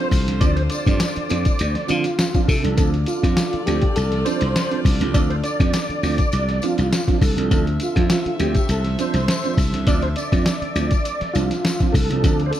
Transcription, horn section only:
0.00 2.44 F4 medium
0.00 2.44 A4 medium
0.00 2.44 C5 medium
2.78 7.18 F4 medium
2.78 7.18 A4 medium
2.78 7.18 D5 medium
7.50 11.90 A4 medium
7.50 11.90 C5 medium
7.50 11.90 E5 medium
12.23 12.60 F4 medium
12.23 12.60 A4 medium
12.23 12.60 D5 medium

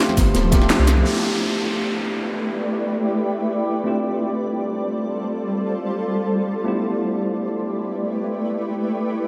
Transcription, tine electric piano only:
0.00 0.51 A3 loud
0.00 0.51 C4 medium
0.00 0.52 D4 medium
0.00 0.53 F4 loud
0.00 0.54 G4 loud
0.00 1.07 B4 medium
0.51 1.02 A3 medium
0.51 1.03 C4 medium
0.51 1.03 D4 medium
0.51 1.04 F4 medium
0.51 1.04 G4 loud
1.03 3.83 A3 medium
1.03 3.83 B3 medium
1.03 3.84 D4 medium
1.03 3.84 E4 medium
1.03 3.85 G4 medium
3.84 6.63 A3 medium
3.84 6.64 C4 medium
3.84 6.64 D4 medium
3.84 6.65 F4 medium
3.84 6.65 G4 medium
6.64 9.28 A3 medium
6.64 9.28 B3 medium
6.64 9.28 D4 medium
6.64 9.28 E4 medium
6.64 9.28 G4 medium

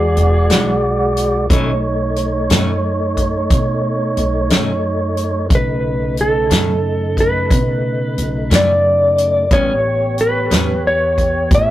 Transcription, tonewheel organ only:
0.00 1.46 G#3 medium
0.00 1.46 F#4 medium
0.00 1.46 D5 medium
1.50 5.46 A3 medium
1.50 5.47 D#4 medium
1.50 5.46 C#5 medium
5.49 9.46 C#3 medium
5.49 9.46 A3 medium
5.49 9.46 D#4 soft
9.51 11.71 B3 medium
9.51 11.71 G4 soft
9.51 11.71 C#5 soft

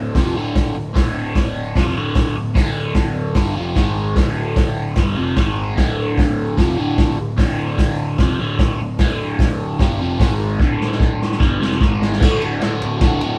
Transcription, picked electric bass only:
0.00 0.11 D1 medium
0.15 0.34 F1 medium
0.35 0.72 D1 medium
0.76 0.94 D1 medium
0.96 1.72 D1 medium
1.76 1.94 F1 medium
1.96 2.33 D1 medium
2.36 2.54 D1 medium
2.56 3.32 D1 medium
3.36 3.55 G1 loud
3.57 3.76 F1 medium
3.77 4.14 G#1 loud
4.17 4.93 D1 medium
4.97 5.16 G1 medium
5.17 5.36 F1 medium
5.37 5.74 G#1 loud
5.77 6.54 D1 medium
6.58 6.76 F1 medium
6.78 7.16 D1 medium
7.19 7.37 D1 medium
7.38 8.15 D1 medium
8.18 8.37 F1 loud
8.39 8.76 D1 medium
8.79 8.98 D1 medium
8.99 9.75 D1 loud
9.80 9.98 G1 loud
10.01 10.19 F1 loud
10.20 10.57 G#1 loud
10.59 11.36 D1 loud
11.41 11.59 G1 loud
11.61 11.80 F1 medium
11.81 12.18 G#1 loud
12.21 12.37 D1 loud
12.43 12.58 D1 medium
12.63 12.78 D1 medium
12.83 12.98 D1 medium
13.02 13.17 D1 loud
13.21 13.37 D1 medium

